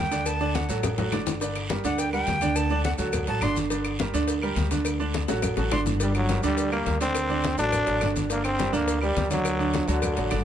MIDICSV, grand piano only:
0, 0, Header, 1, 2, 480
1, 0, Start_track
1, 0, Key_signature, -2, "minor"
1, 0, Tempo, 287219
1, 440, Time_signature, 4, 2, 24, 8
1, 17447, End_track
2, 0, Start_track
2, 0, Title_t, "Grand piano"
2, 0, Program_c, 0, 0
2, 186, Note_on_c, 0, 50, 89
2, 190, Note_on_c, 0, 62, 84
2, 197, Note_on_c, 0, 74, 87
2, 584, Note_off_c, 0, 50, 0
2, 587, Note_off_c, 0, 62, 0
2, 591, Note_off_c, 0, 74, 0
2, 675, Note_on_c, 0, 50, 98
2, 679, Note_on_c, 0, 62, 88
2, 683, Note_on_c, 0, 74, 101
2, 1070, Note_off_c, 0, 50, 0
2, 1072, Note_off_c, 0, 62, 0
2, 1074, Note_off_c, 0, 74, 0
2, 1158, Note_on_c, 0, 54, 85
2, 1160, Note_on_c, 0, 66, 82
2, 1163, Note_on_c, 0, 69, 85
2, 1551, Note_off_c, 0, 54, 0
2, 1552, Note_off_c, 0, 66, 0
2, 1554, Note_off_c, 0, 69, 0
2, 1634, Note_on_c, 0, 54, 77
2, 1643, Note_on_c, 0, 66, 86
2, 1647, Note_on_c, 0, 69, 78
2, 1832, Note_off_c, 0, 54, 0
2, 1837, Note_off_c, 0, 66, 0
2, 1839, Note_off_c, 0, 69, 0
2, 1879, Note_on_c, 0, 62, 83
2, 1881, Note_on_c, 0, 50, 91
2, 1890, Note_on_c, 0, 74, 93
2, 2271, Note_off_c, 0, 62, 0
2, 2272, Note_off_c, 0, 50, 0
2, 2278, Note_off_c, 0, 74, 0
2, 2355, Note_on_c, 0, 50, 82
2, 2363, Note_on_c, 0, 74, 86
2, 2365, Note_on_c, 0, 62, 82
2, 2749, Note_off_c, 0, 50, 0
2, 2753, Note_off_c, 0, 74, 0
2, 2754, Note_off_c, 0, 62, 0
2, 2837, Note_on_c, 0, 55, 66
2, 2842, Note_on_c, 0, 67, 71
2, 2844, Note_on_c, 0, 70, 70
2, 3033, Note_off_c, 0, 55, 0
2, 3036, Note_off_c, 0, 67, 0
2, 3037, Note_off_c, 0, 70, 0
2, 3077, Note_on_c, 0, 50, 93
2, 3086, Note_on_c, 0, 62, 98
2, 3086, Note_on_c, 0, 74, 99
2, 3470, Note_off_c, 0, 50, 0
2, 3475, Note_off_c, 0, 62, 0
2, 3475, Note_off_c, 0, 74, 0
2, 3556, Note_on_c, 0, 55, 79
2, 3560, Note_on_c, 0, 67, 73
2, 3561, Note_on_c, 0, 70, 81
2, 3949, Note_off_c, 0, 55, 0
2, 3951, Note_off_c, 0, 67, 0
2, 3952, Note_off_c, 0, 70, 0
2, 4032, Note_on_c, 0, 50, 89
2, 4038, Note_on_c, 0, 62, 99
2, 4042, Note_on_c, 0, 74, 93
2, 4426, Note_off_c, 0, 50, 0
2, 4430, Note_off_c, 0, 62, 0
2, 4432, Note_off_c, 0, 74, 0
2, 4514, Note_on_c, 0, 50, 91
2, 4524, Note_on_c, 0, 62, 100
2, 4525, Note_on_c, 0, 74, 92
2, 4908, Note_off_c, 0, 50, 0
2, 4914, Note_off_c, 0, 62, 0
2, 4914, Note_off_c, 0, 74, 0
2, 4984, Note_on_c, 0, 54, 92
2, 4993, Note_on_c, 0, 66, 88
2, 4998, Note_on_c, 0, 69, 86
2, 5381, Note_off_c, 0, 54, 0
2, 5387, Note_off_c, 0, 66, 0
2, 5390, Note_off_c, 0, 69, 0
2, 5472, Note_on_c, 0, 54, 79
2, 5480, Note_on_c, 0, 66, 77
2, 5484, Note_on_c, 0, 69, 76
2, 5669, Note_off_c, 0, 54, 0
2, 5674, Note_off_c, 0, 66, 0
2, 5677, Note_off_c, 0, 69, 0
2, 5716, Note_on_c, 0, 50, 93
2, 5722, Note_on_c, 0, 62, 95
2, 5723, Note_on_c, 0, 74, 93
2, 6109, Note_off_c, 0, 50, 0
2, 6112, Note_off_c, 0, 62, 0
2, 6113, Note_off_c, 0, 74, 0
2, 6197, Note_on_c, 0, 50, 83
2, 6200, Note_on_c, 0, 62, 83
2, 6203, Note_on_c, 0, 74, 84
2, 6589, Note_off_c, 0, 50, 0
2, 6591, Note_off_c, 0, 62, 0
2, 6593, Note_off_c, 0, 74, 0
2, 6675, Note_on_c, 0, 55, 70
2, 6682, Note_on_c, 0, 67, 72
2, 6689, Note_on_c, 0, 70, 78
2, 6871, Note_off_c, 0, 55, 0
2, 6875, Note_off_c, 0, 67, 0
2, 6879, Note_off_c, 0, 70, 0
2, 6910, Note_on_c, 0, 50, 104
2, 6917, Note_on_c, 0, 62, 100
2, 6920, Note_on_c, 0, 74, 95
2, 7305, Note_off_c, 0, 50, 0
2, 7309, Note_off_c, 0, 62, 0
2, 7311, Note_off_c, 0, 74, 0
2, 7397, Note_on_c, 0, 55, 87
2, 7400, Note_on_c, 0, 67, 79
2, 7403, Note_on_c, 0, 70, 89
2, 7789, Note_off_c, 0, 55, 0
2, 7791, Note_off_c, 0, 67, 0
2, 7793, Note_off_c, 0, 70, 0
2, 7870, Note_on_c, 0, 50, 83
2, 7872, Note_on_c, 0, 62, 81
2, 7880, Note_on_c, 0, 74, 88
2, 8265, Note_off_c, 0, 50, 0
2, 8266, Note_off_c, 0, 62, 0
2, 8271, Note_off_c, 0, 74, 0
2, 8348, Note_on_c, 0, 50, 98
2, 8352, Note_on_c, 0, 62, 100
2, 8357, Note_on_c, 0, 74, 86
2, 8744, Note_off_c, 0, 50, 0
2, 8746, Note_off_c, 0, 62, 0
2, 8750, Note_off_c, 0, 74, 0
2, 8830, Note_on_c, 0, 54, 90
2, 8834, Note_on_c, 0, 66, 89
2, 8836, Note_on_c, 0, 69, 91
2, 9225, Note_off_c, 0, 54, 0
2, 9228, Note_off_c, 0, 66, 0
2, 9229, Note_off_c, 0, 69, 0
2, 9301, Note_on_c, 0, 54, 80
2, 9308, Note_on_c, 0, 66, 84
2, 9309, Note_on_c, 0, 69, 80
2, 9503, Note_off_c, 0, 54, 0
2, 9507, Note_off_c, 0, 66, 0
2, 9508, Note_off_c, 0, 69, 0
2, 9542, Note_on_c, 0, 50, 81
2, 9548, Note_on_c, 0, 62, 99
2, 9554, Note_on_c, 0, 74, 88
2, 9940, Note_off_c, 0, 50, 0
2, 9944, Note_off_c, 0, 62, 0
2, 9947, Note_off_c, 0, 74, 0
2, 10033, Note_on_c, 0, 50, 73
2, 10035, Note_on_c, 0, 62, 82
2, 10040, Note_on_c, 0, 74, 85
2, 10427, Note_off_c, 0, 50, 0
2, 10428, Note_off_c, 0, 62, 0
2, 10431, Note_off_c, 0, 74, 0
2, 10509, Note_on_c, 0, 55, 73
2, 10516, Note_on_c, 0, 67, 71
2, 10524, Note_on_c, 0, 70, 73
2, 10708, Note_off_c, 0, 55, 0
2, 10712, Note_off_c, 0, 67, 0
2, 10717, Note_off_c, 0, 70, 0
2, 10750, Note_on_c, 0, 50, 102
2, 10752, Note_on_c, 0, 62, 93
2, 10758, Note_on_c, 0, 74, 109
2, 11146, Note_off_c, 0, 50, 0
2, 11147, Note_off_c, 0, 62, 0
2, 11150, Note_off_c, 0, 74, 0
2, 11225, Note_on_c, 0, 55, 85
2, 11230, Note_on_c, 0, 67, 79
2, 11235, Note_on_c, 0, 70, 85
2, 11622, Note_off_c, 0, 55, 0
2, 11625, Note_off_c, 0, 67, 0
2, 11628, Note_off_c, 0, 70, 0
2, 11710, Note_on_c, 0, 50, 93
2, 11714, Note_on_c, 0, 62, 95
2, 11715, Note_on_c, 0, 74, 88
2, 12106, Note_off_c, 0, 50, 0
2, 12108, Note_off_c, 0, 62, 0
2, 12108, Note_off_c, 0, 74, 0
2, 12182, Note_on_c, 0, 50, 90
2, 12187, Note_on_c, 0, 62, 96
2, 12197, Note_on_c, 0, 74, 98
2, 12581, Note_off_c, 0, 50, 0
2, 12584, Note_off_c, 0, 62, 0
2, 12589, Note_off_c, 0, 74, 0
2, 12665, Note_on_c, 0, 54, 86
2, 12670, Note_on_c, 0, 66, 87
2, 12671, Note_on_c, 0, 69, 88
2, 13062, Note_off_c, 0, 54, 0
2, 13066, Note_off_c, 0, 66, 0
2, 13066, Note_off_c, 0, 69, 0
2, 13141, Note_on_c, 0, 54, 80
2, 13150, Note_on_c, 0, 66, 83
2, 13150, Note_on_c, 0, 69, 80
2, 13344, Note_off_c, 0, 54, 0
2, 13349, Note_off_c, 0, 66, 0
2, 13349, Note_off_c, 0, 69, 0
2, 13387, Note_on_c, 0, 50, 91
2, 13393, Note_on_c, 0, 62, 90
2, 13398, Note_on_c, 0, 74, 88
2, 13784, Note_off_c, 0, 50, 0
2, 13787, Note_off_c, 0, 62, 0
2, 13790, Note_off_c, 0, 74, 0
2, 13873, Note_on_c, 0, 50, 74
2, 13874, Note_on_c, 0, 62, 75
2, 13879, Note_on_c, 0, 74, 74
2, 14267, Note_off_c, 0, 50, 0
2, 14268, Note_off_c, 0, 62, 0
2, 14271, Note_off_c, 0, 74, 0
2, 14346, Note_on_c, 0, 55, 82
2, 14351, Note_on_c, 0, 67, 79
2, 14355, Note_on_c, 0, 70, 72
2, 14547, Note_off_c, 0, 55, 0
2, 14549, Note_off_c, 0, 67, 0
2, 14552, Note_off_c, 0, 70, 0
2, 14578, Note_on_c, 0, 50, 102
2, 14586, Note_on_c, 0, 62, 112
2, 14590, Note_on_c, 0, 74, 96
2, 14979, Note_off_c, 0, 50, 0
2, 14984, Note_off_c, 0, 62, 0
2, 14986, Note_off_c, 0, 74, 0
2, 15065, Note_on_c, 0, 55, 83
2, 15070, Note_on_c, 0, 67, 80
2, 15071, Note_on_c, 0, 70, 78
2, 15463, Note_off_c, 0, 55, 0
2, 15466, Note_off_c, 0, 67, 0
2, 15467, Note_off_c, 0, 70, 0
2, 15545, Note_on_c, 0, 50, 88
2, 15550, Note_on_c, 0, 62, 83
2, 15557, Note_on_c, 0, 74, 96
2, 15944, Note_off_c, 0, 50, 0
2, 15946, Note_off_c, 0, 62, 0
2, 15950, Note_off_c, 0, 74, 0
2, 16024, Note_on_c, 0, 50, 102
2, 16031, Note_on_c, 0, 62, 96
2, 16034, Note_on_c, 0, 74, 95
2, 16423, Note_off_c, 0, 50, 0
2, 16428, Note_off_c, 0, 62, 0
2, 16429, Note_off_c, 0, 74, 0
2, 16511, Note_on_c, 0, 54, 97
2, 16516, Note_on_c, 0, 66, 90
2, 16518, Note_on_c, 0, 69, 79
2, 16908, Note_off_c, 0, 54, 0
2, 16911, Note_off_c, 0, 66, 0
2, 16912, Note_off_c, 0, 69, 0
2, 16997, Note_on_c, 0, 54, 77
2, 16999, Note_on_c, 0, 66, 75
2, 17009, Note_on_c, 0, 69, 73
2, 17194, Note_off_c, 0, 54, 0
2, 17195, Note_off_c, 0, 66, 0
2, 17201, Note_off_c, 0, 69, 0
2, 17230, Note_on_c, 0, 50, 93
2, 17235, Note_on_c, 0, 62, 90
2, 17240, Note_on_c, 0, 74, 89
2, 17447, Note_off_c, 0, 50, 0
2, 17447, Note_off_c, 0, 62, 0
2, 17447, Note_off_c, 0, 74, 0
2, 17447, End_track
0, 0, End_of_file